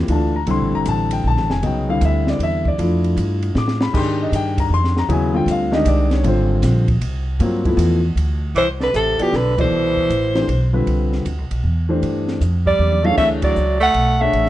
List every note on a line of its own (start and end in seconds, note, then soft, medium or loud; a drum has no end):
0.08 0.46 D2 medium
0.08 0.32 E3 medium
0.08 0.32 A3 medium
0.08 0.32 D4 medium
0.08 0.32 F4 medium
0.08 ride medium
0.12 0.35 A5 medium
0.36 0.48 A#5 medium
0.47 0.59 C2 medium
0.47 1.55 D3 medium
0.47 1.55 G3 medium
0.47 1.55 C4 medium
0.47 1.55 E4 medium
0.47 ride medium
0.51 0.74 C6 medium
0.59 0.72 A1 medium
0.73 0.85 F1 medium
0.73 0.87 A#5 loud
0.85 1.23 A1 loud
0.85 1.12 A5 loud
0.85 hi-hat pedal medium
0.85 ride medium
1.11 1.25 G5 medium
1.11 ride medium
1.24 1.37 A#1 medium
1.24 1.51 A5 loud
1.37 1.49 A1 medium
1.37 snare soft
1.50 1.62 F1 medium
1.50 1.63 G#5 medium
1.50 snare medium
1.63 2.00 C2 medium
1.63 1.86 C#3 medium
1.63 1.85 F#3 medium
1.63 1.86 B3 medium
1.63 1.86 D#4 medium
1.63 1.89 G5 medium
1.63 ride medium
1.89 2.71 D3 medium
1.89 2.71 G3 medium
1.89 2.71 C4 medium
1.89 2.71 E4 medium
1.89 2.02 F5 loud
2.01 2.39 D2 loud
2.01 2.28 E5 loud
2.01 hi-hat pedal medium
2.01 ride medium
2.27 2.41 D5 medium
2.27 snare medium
2.39 2.77 E2 medium
2.39 ride medium
2.43 2.66 E5 loud
2.65 3.15 D5 medium
2.65 kick medium
2.78 3.16 F2 loud
2.78 3.86 A3 medium
2.78 3.86 D4 medium
2.78 3.86 E4 medium
2.78 3.87 F4 medium
2.78 ride medium
3.04 ride soft
3.17 3.54 G2 loud
3.17 hi-hat pedal medium
3.17 ride medium
3.42 ride medium
3.55 3.92 A2 medium
3.55 3.81 D6 medium
3.55 snare medium
3.68 snare medium
3.81 3.94 B5 loud
3.81 snare loud
3.93 4.31 G#2 medium
3.93 5.01 D#3 medium
3.93 5.01 D4 medium
3.93 5.01 G4 medium
3.93 5.01 G#4 medium
3.93 kick medium
3.93 crash medium
3.97 4.20 C6 medium
4.22 4.34 D#5 medium
4.32 4.69 G2 loud
4.32 4.58 G5 loud
4.32 hi-hat pedal medium
4.32 ride medium
4.58 4.72 A#5 medium
4.58 kick medium
4.58 ride medium
4.70 5.08 F2 medium
4.74 4.97 C6 loud
4.84 snare soft
4.97 5.10 A#5 medium
4.97 snare medium
5.09 5.46 D#2 medium
5.09 5.32 C#3 medium
5.09 5.32 F#3 medium
5.09 5.32 B3 medium
5.09 5.32 E4 medium
5.09 ride medium
5.13 5.36 G#5 medium
5.33 5.67 D3 medium
5.33 5.68 G3 medium
5.33 5.68 C4 medium
5.33 5.68 F4 medium
5.33 5.48 G5 medium
5.46 5.84 D2 loud
5.46 hi-hat pedal medium
5.46 ride medium
5.51 5.74 F5 loud
5.71 6.21 D#3 medium
5.71 6.22 G#3 medium
5.71 6.22 D4 medium
5.71 6.22 G4 medium
5.71 5.87 D#5 medium
5.71 snare medium
5.85 6.23 C2 loud
5.85 6.12 D5 medium
5.85 hi-hat pedal medium
5.85 ride medium
6.11 6.25 C#5 medium
6.11 snare medium
6.11 ride medium
6.24 6.61 G#1 loud
6.24 6.83 D3 medium
6.24 6.83 G3 medium
6.24 6.83 C4 medium
6.24 6.83 F4 medium
6.24 6.86 C5 medium
6.24 ride medium
6.62 7.00 A#1 loud
6.62 snare soft
6.62 hi-hat pedal medium
6.62 ride loud
6.88 kick medium
6.88 ride medium
7.01 7.39 C2 loud
7.01 ride medium
7.40 7.76 G2 loud
7.40 7.63 F#3 medium
7.40 7.63 A#3 medium
7.40 7.63 C4 medium
7.40 7.63 F4 medium
7.40 ride medium
7.65 7.99 F3 medium
7.65 7.99 A3 medium
7.65 7.99 B3 medium
7.65 7.99 E4 medium
7.65 kick medium
7.65 ride medium
7.77 8.15 E2 loud
7.77 hi-hat pedal medium
7.77 ride loud
8.16 8.54 D2 loud
8.16 ride medium
8.55 8.92 C2 medium
8.55 8.67 E3 medium
8.55 8.69 C5 loud
8.55 ride medium
8.80 8.93 D3 medium
8.80 8.95 B4 medium
8.80 snare soft
8.93 9.17 A1 medium
8.93 9.20 C3 medium
8.93 9.24 A4 medium
8.93 hi-hat pedal medium
8.93 ride medium
9.19 9.34 B2 medium
9.19 9.31 F3 medium
9.19 9.31 B3 medium
9.19 9.31 E4 medium
9.19 9.37 G4 medium
9.19 9.31 A4 medium
9.19 9.31 D5 medium
9.19 muted upright bass stroke soft
9.19 ride medium
9.33 9.70 B1 medium
9.33 9.57 D3 medium
9.33 9.59 B4 medium
9.33 snare soft
9.58 10.07 B2 medium
9.58 10.69 E3 medium
9.58 10.07 E3 medium
9.58 10.07 E4 medium
9.58 10.08 A4 medium
9.58 10.71 C5 medium
9.58 10.08 D5 medium
9.58 kick medium
9.58 ride medium
9.71 10.08 C2 medium
9.97 kick soft
10.10 10.47 A1 medium
10.10 hi-hat pedal medium
10.10 ride medium
10.35 10.47 E3 medium
10.35 10.47 A3 medium
10.35 10.47 D4 medium
10.35 10.47 G4 medium
10.35 10.47 C5 medium
10.35 snare medium
10.35 ride soft
10.48 10.85 B1 medium
10.48 ride medium
10.73 11.22 D3 medium
10.73 11.22 G3 medium
10.73 11.23 C4 medium
10.73 11.23 F4 medium
10.73 11.23 B4 medium
10.87 11.24 C2 medium
10.87 ride medium
11.12 snare soft
11.25 11.38 D2 medium
11.25 hi-hat pedal soft
11.25 ride medium
11.38 11.50 C2 medium
11.51 11.63 B1 medium
11.51 ride medium
11.64 12.01 E2 medium
11.89 12.38 E3 medium
11.89 12.38 A3 medium
11.89 12.38 D4 medium
11.89 12.38 G4 medium
11.89 12.39 C5 medium
12.02 12.40 G2 medium
12.02 ride medium
12.28 snare soft
12.41 12.78 F2 medium
12.41 hi-hat pedal medium
12.41 ride medium
12.66 13.05 G3 medium
12.66 13.07 D5 loud
12.66 kick soft
12.79 13.16 E2 medium
12.79 high tom soft
12.92 high tom medium
13.03 13.54 E3 medium
13.03 13.17 A3 medium
13.03 13.54 A3 medium
13.03 13.54 D4 medium
13.03 13.54 G#4 medium
13.03 13.54 C#5 medium
13.03 13.17 F5 medium
13.03 high tom medium
13.17 13.55 D2 medium
13.17 13.29 A3 medium
13.17 13.29 E5 medium
13.17 kick medium
13.17 snare soft
13.17 crash medium
13.42 13.79 F#3 medium
13.42 13.79 D5 medium
13.42 kick medium
13.42 ride medium
13.56 13.94 C#2 medium
13.56 hi-hat pedal medium
13.80 14.17 A3 loud
13.80 14.23 F#5 loud
13.80 ride soft
13.94 14.32 B1 medium
13.94 ride medium
14.17 14.49 A3 medium
14.17 14.49 D4 medium
14.17 14.49 G#4 medium
14.17 14.49 E5 loud
14.21 14.49 C#5 medium
14.21 14.49 F#5 medium
14.33 14.49 A1 medium
14.33 ride medium
14.46 snare soft